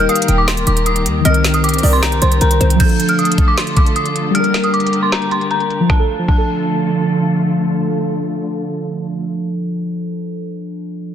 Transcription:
Already playing: string section D#3 A#3 G4 A#4, synth keys G3 D#4 A#4
0.09 synth pluck F5, synth bell D#6, closed hi-hat
0.16 closed hi-hat
0.22 closed hi-hat
0.28 808-style bass D#1, synth pluck G5, closed hi-hat
0.38 synth bell D6
0.48 synth bell C6, snare, clap, closed hi-hat
0.57 closed hi-hat
0.67 808-style bass D#1, synth bell D6, closed hi-hat
0.77 closed hi-hat
0.86 synth bell D#6, closed hi-hat
0.96 closed hi-hat
1.06 808-style bass D#2, closed hi-hat
1.20 synth keys D#3
1.25 808-style bass C2, synth keys C4, string section C4 G4 A#4, synth pluck D#5, synth bell F6, closed hi-hat
1.30 synth keys A#4
1.34 closed hi-hat
1.44 snare, clap, closed hi-hat
1.54 synth bell D#6, closed hi-hat
1.64 synth bell D6, closed hi-hat
1.69 closed hi-hat
1.74 closed hi-hat
1.78 closed hi-hat
1.83 808-style bass C2, synth pluck D5, open hi-hat
1.93 synth bell C6
2.03 synth bell A#5, snare, clap, closed hi-hat
2.12 closed hi-hat
2.22 808-style bass C2, synth pluck C5, synth bell C6, closed hi-hat
2.32 closed hi-hat
2.41 808-style bass C2, synth pluck A#4, synth bell A#5, closed hi-hat
2.51 closed hi-hat
2.61 808-style bass C2, synth pluck C5, closed hi-hat
2.70 closed hi-hat
2.75 synth keys F3
2.80 string section D3 A3 F4 A4, synth keys D4, synth bell G6, kick, closed hi-hat, crash
2.85 synth keys A4
2.89 closed hi-hat
3.00 closed hi-hat
3.09 synth bell F6, closed hi-hat
3.19 synth bell D#6, closed hi-hat
3.25 closed hi-hat
3.32 closed hi-hat
3.38 kick, closed hi-hat
3.48 synth bell D6
3.57 synth bell C6, snare, clap, closed hi-hat
3.67 closed hi-hat
3.77 synth bell D6, kick, closed hi-hat
3.86 closed hi-hat
3.96 synth bell D#6, closed hi-hat
4.06 closed hi-hat
4.16 closed hi-hat
4.30 synth keys G3
4.35 string section A#3 G4 A#4, synth keys D4, synth bell F6, closed hi-hat
4.40 synth keys A#4
4.44 closed hi-hat
4.54 snare, clap, closed hi-hat
4.64 synth bell D#6, closed hi-hat
4.74 synth bell D6, closed hi-hat
4.80 closed hi-hat
4.87 closed hi-hat
4.93 closed hi-hat
5.03 synth bell C6
5.12 synth bell A#5, snare, clap, closed hi-hat
5.22 closed hi-hat
5.31 synth bell C6, closed hi-hat
5.41 closed hi-hat
5.51 synth bell A#5, closed hi-hat
5.60 closed hi-hat
5.70 closed hi-hat
5.80 synth keys F3
5.90 string section D3 A3 F4 A4, synth keys D4, synth bell A5, kick, snare
5.99 synth keys A4
6.19 synth keys F3
6.28 synth keys D4, synth bell A5, kick, crash
6.38 synth keys A4

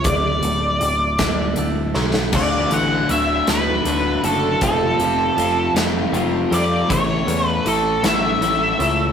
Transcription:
Already playing: clean electric guitar A3
0.04 picked electric bass D1, clean electric guitar D2, lead electric guitar D5, kick, closed hi-hat
0.43 picked electric bass D1, clean electric guitar A2, closed hi-hat
0.81 picked electric bass D1, clean electric guitar A2, closed hi-hat
1.19 picked electric bass D1, clean electric guitar D3, kick, snare, closed hi-hat
1.56 picked electric bass D1, clean electric guitar A3, closed hi-hat
1.94 picked electric bass B1, clean electric guitar D3, snare
2.14 snare
2.32 picked electric bass D1, overdriven electric guitar D2 A2 D3, clean electric guitar D2 A2 D3 A3 F#4, lead electric guitar D5, kick, crash
2.70 picked electric bass A1, overdriven electric guitar D2 A2 D3, clean electric guitar D3 A3 F#4, lead electric guitar F#5, closed hi-hat
3.09 picked electric bass D1, overdriven electric guitar D2 A2 D3, clean electric guitar A2 D3 A3 F#4, lead electric guitar E5, closed hi-hat
3.46 picked electric bass D1, overdriven electric guitar D2 A2 D3, clean electric guitar D3 A3 F#4, lead electric guitar B4, snare, closed hi-hat
3.85 picked electric bass D1, overdriven electric guitar D2 A2 D3, clean electric guitar A2 D3 A3 F#4, closed hi-hat
4.22 picked electric bass F#1, overdriven electric guitar D2 A2 D3, clean electric guitar D3 A3 F#4, lead electric guitar A4, closed hi-hat
4.61 picked electric bass F1, clean electric guitar F2 C3 F3 A3 C4 F4, overdriven electric guitar F2 C3 F3, lead electric guitar A4, kick, closed hi-hat
4.99 picked electric bass F1, overdriven electric guitar F2 C3 F3, clean electric guitar F3 A3 C4 F4, closed hi-hat
5.36 picked electric bass F1, overdriven electric guitar F2 C3 F3, clean electric guitar F3 A3 C4 F4, closed hi-hat
5.74 picked electric bass F1, overdriven electric guitar F2 C3 F3, clean electric guitar F3 A3 C4 F4, snare, closed hi-hat
6.12 picked electric bass F1, overdriven electric guitar F2 C3 F3, clean electric guitar F3 A3 C4 F4, closed hi-hat
6.50 picked electric bass F2, overdriven electric guitar F2 C3 F3, clean electric guitar F3 A3 C4 F4, lead electric guitar D5, closed hi-hat
6.88 picked electric bass A1, clean electric guitar A2 E3 A3 C#4 E4 A4, overdriven electric guitar A2 E3 A3, lead electric guitar C#5, kick, closed hi-hat
7.26 picked electric bass E2, overdriven electric guitar A2 E3 A3, clean electric guitar A3 C#4 E4 A4, closed hi-hat
7.48 lead electric guitar B4
7.64 picked electric bass A1, overdriven electric guitar A2 E3 A3, clean electric guitar A3 C#4 E4 A4, lead electric guitar A4, closed hi-hat
8.02 picked electric bass A1, overdriven electric guitar A2 E3 A3, clean electric guitar A3 C#4 E4 A4, lead electric guitar E5, snare, closed hi-hat
8.41 picked electric bass A1, overdriven electric guitar A2 E3 A3, clean electric guitar A3 C#4 E4 A4, closed hi-hat
8.79 picked electric bass C#2, overdriven electric guitar A2 E3 A3, clean electric guitar A3 C#4 E4 A4, closed hi-hat

